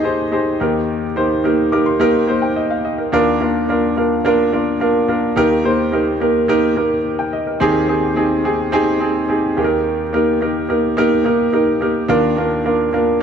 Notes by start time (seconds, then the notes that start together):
Already playing: D#2 D#3 D#4 G4 G#4 C5 D#5
0.04 D#4 G4 G#4 C5
0.32 D#4 G4 G#4 C5
0.60 D#2 D#3 A#3 D#4 G4 A#4
1.16 A#3 D#4 G4 C5
1.44 A#3 D#4 G4 A#4
1.72 A#3 D#4 G4 A#4 D6
1.86 C6
2.00 A#3 D#4 G4 A#4 A#5
2.27 A#3 D#4 G4 C5
2.42 G5
2.56 D#5
2.70 F5
2.85 D#5
2.98 A#4
3.12 D#2 D#3 A#3 D4 F4 A#4
3.40 A#3 D4 F4 A#4
3.69 A#3 D4 F4 A#4
3.97 A#3 D4 F4 A#4
4.25 A#3 D4 F4 A#4
4.52 A#3 D4 F4 A#4
4.80 A#3 D4 F4 A#4
5.08 A#3 D4 F4 A#4
5.36 D#2 D#3 A#3 D#4 G4 A#4
5.64 A#3 D#4 G4 C5
5.92 A#3 D#4 G4 A#4
6.20 A#3 D#4 G4 A#4
6.48 A#3 D#4 G4 A#4
6.76 A#3 D#4 G4 A#4
7.19 G5
7.33 D#5
7.47 A#4
7.60 D#2 D#3 C4 D#4 G4 G#4
7.88 C4 D#4 G4 G#4
8.16 C4 D#4 G4 G#4
8.44 C4 D#4 G4 G#4
8.72 C4 D#4 G4 G#4
9.00 C4 D#4 G4 G#4
9.29 C4 D#4 G4 G#4
9.57 D#2 D#3 A#3 D#4 G4 G#4
9.64 A#4
10.13 A#3 D#4 G4 A#4
10.41 A#3 D#4 G4 A#4
10.69 A#3 D#4 G4 A#4
10.97 A#3 D#4 G4 A#4
11.24 A#3 D#4 G4 A#4
11.53 A#3 D#4 G4 A#4
11.81 A#3 D#4 G4 A#4
12.08 D#2 D#3 A#3 D4 F4 A#4
12.37 A#3 D4 F4 A#4
12.64 A#3 D4 F4 A#4
12.93 A#3 D4 F4 A#4